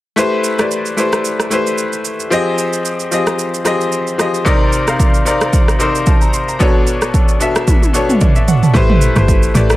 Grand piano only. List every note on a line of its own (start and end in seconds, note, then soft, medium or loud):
0.16 0.49 A3 loud
0.16 0.50 E4 loud
0.16 0.50 G4 loud
0.16 0.50 B4 medium
0.16 0.51 C5 loud
0.58 0.90 A3 medium
0.58 0.90 E4 medium
0.58 0.91 G4 medium
0.58 0.91 B4 medium
0.58 0.91 D5 medium
0.97 1.41 A3 medium
0.97 1.42 E4 medium
0.97 1.42 G4 medium
0.97 1.42 B4 medium
0.97 1.43 C5 medium
1.50 2.16 A3 medium
1.50 2.17 E4 medium
1.50 2.17 G4 medium
1.50 2.17 B4 medium
1.50 2.18 C5 medium
2.30 2.96 F3 loud
2.30 2.97 C4 loud
2.30 2.97 G4 loud
2.30 2.98 G#4 loud
2.30 2.98 D#5 loud
3.11 3.56 F3 medium
3.11 3.56 C4 medium
3.11 3.56 G4 medium
3.11 3.57 G#4 medium
3.11 3.57 D#5 medium
3.64 4.09 F3 medium
3.64 4.09 C4 medium
3.64 4.10 G4 medium
3.64 4.10 G#4 medium
3.64 4.10 D#5 loud
4.18 4.41 F3 medium
4.18 4.41 C4 medium
4.18 4.41 G4 medium
4.18 4.42 G#4 medium
4.18 4.42 D#5 medium
4.45 4.78 C3 loud
4.45 4.78 C4 loud
4.45 4.79 D#4 loud
4.45 4.79 A#4 loud
4.45 4.79 D5 loud
4.86 5.19 C3 medium
4.86 5.19 C4 medium
4.86 5.19 D#4 medium
4.86 5.20 A#4 medium
4.86 5.20 F5 medium
5.25 5.70 C3 medium
5.25 5.70 C4 medium
5.25 5.70 D#4 medium
5.25 5.71 A#4 medium
5.25 5.71 D5 medium
5.79 6.45 C3 medium
5.79 6.45 C4 medium
5.79 6.45 D#4 medium
5.79 6.46 A#4 medium
5.79 6.46 C5 medium
6.07 6.21 A5 medium
6.21 6.33 A#5 medium
6.33 6.48 C6 medium
6.48 6.74 A#5 medium
6.59 7.25 B2 loud
6.59 7.25 B3 loud
6.59 7.26 D4 loud
6.59 7.26 A4 loud
6.59 7.26 C#5 loud
7.39 7.84 B2 medium
7.39 7.84 B3 medium
7.39 7.85 D4 medium
7.39 7.85 A4 medium
7.39 7.85 E5 medium
7.93 8.38 B2 medium
7.93 8.38 B3 medium
7.93 8.38 D4 medium
7.93 8.39 A4 medium
7.93 8.22 C#5 medium
8.21 8.35 D5 medium
8.36 8.47 E5 medium
8.48 8.62 F#5 medium
8.63 8.88 A5 medium
8.73 9.07 A3 loud
8.73 9.07 E4 loud
8.73 9.07 G4 loud
8.73 9.08 B4 loud
8.73 9.08 C5 loud
9.15 9.47 A3 medium
9.15 9.48 E4 medium
9.15 9.48 G4 medium
9.15 9.48 B4 medium
9.15 9.49 C5 medium
9.54 9.77 A3 medium
9.54 9.77 E4 medium
9.54 9.77 G4 medium
9.54 9.77 B4 medium
9.54 9.77 D5 medium